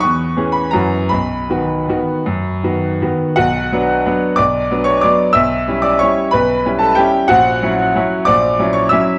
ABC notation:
X:1
M:3/4
L:1/8
Q:1/4=181
K:B
V:1 name="Grand piano"
c'3 b a2 | b6- | b4- b z | [K:Bm] [Ff]6 |
[dd']3 [cc'] [dd']2 | [ee']3 [dd'] [cc']2 | [Bb]3 [Aa] [Gg]2 | [Ff]6 |
[dd']3 [cc'] [ee']2 |]
V:2 name="Grand piano"
E,,2 [E,CG]2 [F,,E,CF]2 | B,,,2 [D,B,F]2 [D,B,F]2 | F,,2 [D,B,F]2 [D,B,F]2 | [K:Bm] B,,,2 [F,B,D]2 [F,B,D]2 |
B,,,2 [F,B,D]2 [F,B,D]2 | B,,,2 [G,CE]2 [G,CE]2 | B,,,2 [G,CE]2 [G,CE]2 | ^A,,,2 [F,CE]2 [F,CE]2 |
^A,,,2 [F,CE]2 [F,CE]2 |]